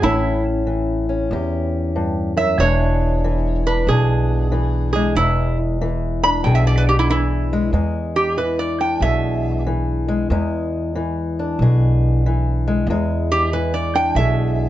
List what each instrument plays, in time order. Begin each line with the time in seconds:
0.02 upright bass A1, steel-string acoustic guitar A2 E3 C#4, resonator guitar played with a steel bar E4
0.67 steel-string acoustic guitar E3
1.09 steel-string acoustic guitar C#4
1.31 upright bass E2, steel-string acoustic guitar E2 G4
1.96 steel-string acoustic guitar G2
2.37 steel-string acoustic guitar F#2, resonator guitar played with a steel bar E5
2.58 upright bass E1, steel-string acoustic guitar E2 E3 G#3 D4, resonator guitar played with a steel bar C#5
2.63 steel-string acoustic guitar G#4
3.24 steel-string acoustic guitar E3
3.67 steel-string acoustic guitar D4, resonator guitar played with a steel bar B4
3.87 upright bass B1, steel-string acoustic guitar B2 D4, resonator guitar played with a steel bar G#4
4.52 steel-string acoustic guitar E3
4.93 steel-string acoustic guitar G#3, resonator guitar played with a steel bar G#4
5.15 upright bass E1, steel-string acoustic guitar E2 G#3, resonator guitar played with a steel bar E4
5.81 steel-string acoustic guitar E3
6.23 steel-string acoustic guitar D4, resonator guitar played with a steel bar B5
6.44 upright bass B1, steel-string acoustic guitar B2 G#4, resonator guitar played with a steel bar G5
6.55 resonator guitar played with a steel bar E5
6.67 resonator guitar played with a steel bar D5
6.78 resonator guitar played with a steel bar B4
6.89 resonator guitar played with a steel bar G4
6.99 resonator guitar played with a steel bar E4
7.09 steel-string acoustic guitar E3, resonator guitar played with a steel bar E4
7.53 steel-string acoustic guitar G#3
7.73 upright bass E2, steel-string acoustic guitar E2 G#3
8.16 resonator guitar played with a steel bar G4
8.37 steel-string acoustic guitar E3, resonator guitar played with a steel bar B4
8.59 resonator guitar played with a steel bar D5
8.80 steel-string acoustic guitar D4, resonator guitar played with a steel bar G5
9.00 upright bass B1, steel-string acoustic guitar B2 G#4, resonator guitar played with a steel bar E5
9.67 steel-string acoustic guitar E3
10.08 steel-string acoustic guitar G#3
10.30 upright bass E2, steel-string acoustic guitar E2 G#3
10.95 steel-string acoustic guitar E3
11.39 steel-string acoustic guitar D4
11.59 upright bass B1, steel-string acoustic guitar B2 G#4
12.26 steel-string acoustic guitar E3
12.68 steel-string acoustic guitar G#3
12.87 upright bass E2, steel-string acoustic guitar E2 G#3
13.32 resonator guitar played with a steel bar G4
13.53 steel-string acoustic guitar E3, resonator guitar played with a steel bar B4
13.74 resonator guitar played with a steel bar D5
13.95 steel-string acoustic guitar D4, resonator guitar played with a steel bar G5
14.15 upright bass B1, steel-string acoustic guitar B2 G#4, resonator guitar played with a steel bar E5